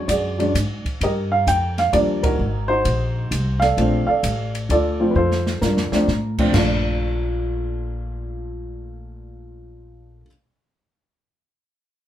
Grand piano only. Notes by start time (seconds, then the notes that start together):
Already playing: F#3 G#3 C#4 D4
0.08 F#4 G#4 D5
0.38 F#3 G#3 C#4 D4
1.03 G4 A#4 D#5
1.32 F5
1.48 G5
1.79 F5
1.93 F3 G3 A#3 D4 D5
2.23 D#4 F#4 A#4
2.68 D#4 F#4 C5
3.60 A4 D5 F5
3.78 F3 A3 C4 D4
4.07 A4 D5 F5
4.71 F4 A4 D5
5.00 F3 A3 C4 F4
5.11 B4
5.16 F4 A4 C5
5.61 D4 F4 A#4
5.92 F3 A3 C4 D4
6.39 A#2 F3 A3 C4 D4
6.54 A#2 F3 A3 D4 F4